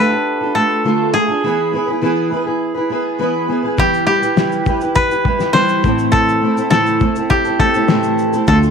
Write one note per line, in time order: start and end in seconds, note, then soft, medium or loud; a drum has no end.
0.00 0.11 A3 medium
0.00 0.12 D4 medium
0.00 0.11 F4 medium
0.00 1.28 F4 medium
0.00 1.20 G4 medium
0.00 0.54 A4 medium
0.00 1.75 B4 loud
0.10 0.42 D4 soft
0.10 0.41 F4 soft
0.10 0.39 A4 soft
0.40 0.54 D4 soft
0.40 0.55 F4 soft
0.40 0.55 A4 soft
0.55 0.84 A3 medium
0.55 0.84 D4 medium
0.55 0.84 F4 medium
0.55 1.20 A4 medium
0.55 0.85 A4 medium
0.84 1.14 D3 medium
0.84 1.12 A3 medium
0.84 1.13 D4 medium
0.84 1.14 F4 medium
0.84 1.15 A4 medium
1.13 1.28 A3 soft
1.13 1.29 D4 soft
1.13 1.28 F4 soft
1.13 3.16 G#4 medium
1.13 1.27 A4 medium
1.28 1.44 D4 soft
1.28 1.44 F4 soft
1.28 1.43 A4 soft
1.43 1.73 E3 medium
1.43 1.71 B3 medium
1.43 1.72 E4 medium
1.43 1.73 G#4 medium
1.43 1.74 B4 medium
1.72 1.87 B3 soft
1.72 1.88 E4 medium
1.72 1.87 G#4 medium
1.72 1.86 B4 medium
1.87 2.01 E4 soft
1.87 2.02 G#4 soft
1.87 2.02 B4 medium
2.01 2.31 E3 medium
2.01 2.29 B3 medium
2.01 2.30 E4 medium
2.01 2.31 G#4 medium
2.01 2.32 B4 medium
2.30 2.46 B3 medium
2.30 2.46 E4 medium
2.30 2.46 G#4 medium
2.30 2.43 B4 medium
2.44 2.77 E4 soft
2.44 2.75 G#4 soft
2.44 2.73 B4 soft
2.74 2.89 E4 soft
2.74 2.91 G#4 soft
2.74 2.90 B4 medium
2.90 3.18 B3 medium
2.90 3.18 E4 medium
2.90 3.19 G#4 medium
2.90 3.19 B4 medium
3.19 3.49 E3 medium
3.19 3.47 B3 medium
3.19 3.48 E4 medium
3.19 3.49 G#4 medium
3.19 3.49 B4 medium
3.48 3.63 B3 medium
3.48 3.64 E4 medium
3.48 3.63 G#4 medium
3.48 3.62 B4 medium
3.63 3.78 E4 soft
3.63 3.79 G#4 soft
3.63 3.78 B4 medium
3.77 4.07 E3 medium
3.77 4.05 G3 medium
3.77 4.06 E4 medium
3.77 4.08 G4 medium
3.77 4.06 G4 medium
3.77 4.08 B4 medium
3.77 kick loud
3.77 shaker medium
3.94 shaker soft
4.07 4.22 G3 medium
4.07 4.23 E4 medium
4.07 6.11 G4 medium
4.07 4.21 G4 medium
4.07 4.20 B4 medium
4.21 4.36 E4 soft
4.21 4.36 G4 soft
4.21 4.36 B4 soft
4.21 shaker soft
4.36 4.66 E3 medium
4.36 4.64 G3 medium
4.36 4.65 E4 medium
4.36 4.66 G4 medium
4.36 4.67 B4 medium
4.36 snare loud
4.36 shaker medium
4.52 shaker soft
4.65 4.81 G3 medium
4.65 4.81 E4 medium
4.65 4.81 G4 medium
4.65 4.79 B4 medium
4.65 kick medium
4.65 shaker soft
4.80 5.11 E4 soft
4.80 5.10 G4 soft
4.80 5.08 B4 soft
4.80 shaker medium
4.95 5.59 B4 medium
4.95 kick medium
4.95 shaker medium
5.09 5.24 E4 soft
5.09 5.25 G4 soft
5.09 5.25 B4 medium
5.09 shaker soft
5.24 5.39 G3 soft
5.24 5.40 E4 medium
5.24 5.39 G4 medium
5.24 5.37 B4 medium
5.24 kick medium
5.39 5.54 E4 soft
5.39 5.54 G4 soft
5.39 5.54 B4 soft
5.39 snare soft
5.39 shaker soft
5.53 5.83 E3 medium
5.53 5.84 G3 medium
5.53 5.84 E4 medium
5.53 5.85 G4 medium
5.53 5.85 B4 medium
5.53 7.25 C5 medium
5.53 snare medium
5.53 shaker medium
5.68 shaker medium
5.83 6.43 A2 medium
5.83 6.43 E3 medium
5.83 6.41 A3 medium
5.83 6.41 C4 medium
5.83 6.43 E4 medium
5.83 6.44 A4 medium
5.83 kick medium
5.83 shaker soft
5.98 shaker medium
6.12 6.70 A4 medium
6.12 kick loud
6.12 shaker medium
6.29 shaker soft
6.41 6.57 A3 medium
6.41 6.57 C4 medium
6.41 6.57 E4 medium
6.41 6.55 A4 medium
6.56 6.70 A3 soft
6.56 6.70 C4 soft
6.56 6.70 E4 soft
6.56 6.71 A4 soft
6.56 shaker soft
6.70 7.00 A2 medium
6.70 7.01 E3 medium
6.70 6.99 A3 medium
6.70 7.01 C4 medium
6.70 7.01 E4 medium
6.70 7.59 A4 medium
6.70 7.02 A4 medium
6.70 snare loud
6.70 shaker medium
6.86 shaker soft
7.00 7.16 A3 medium
7.00 7.16 C4 medium
7.00 7.16 E4 medium
7.00 7.15 A4 medium
7.00 kick medium
7.00 shaker soft
7.16 7.47 A3 soft
7.16 7.46 C4 soft
7.16 7.45 E4 soft
7.16 7.44 A4 soft
7.16 shaker medium
7.30 8.71 G4 medium
7.30 kick medium
7.30 shaker medium
7.45 7.58 A3 soft
7.45 7.60 C4 soft
7.45 7.60 E4 soft
7.45 7.60 A4 soft
7.45 shaker soft
7.60 7.75 A3 medium
7.60 7.75 C4 medium
7.60 7.74 E4 medium
7.60 8.48 A4 medium
7.60 7.73 A4 medium
7.60 kick medium
7.74 7.89 A3 soft
7.74 7.90 C4 soft
7.74 7.90 E4 soft
7.74 7.89 A4 soft
7.74 shaker soft
7.88 8.33 A2 medium
7.88 8.34 E3 medium
7.88 8.34 A3 medium
7.88 8.34 C4 medium
7.88 8.33 E4 medium
7.88 8.32 A4 medium
7.88 snare medium
7.88 shaker medium
8.03 shaker medium
8.19 shaker soft
8.33 8.47 A3 soft
8.33 8.48 C4 soft
8.33 8.49 E4 soft
8.33 8.48 A4 medium
8.33 shaker medium
8.47 8.71 D2 medium
8.47 8.71 D3 medium
8.47 8.71 A3 medium
8.47 8.71 D4 medium
8.47 8.71 F4 medium
8.47 8.56 A4 medium
8.47 8.71 A4 medium
8.47 kick loud
8.47 shaker medium
8.63 shaker soft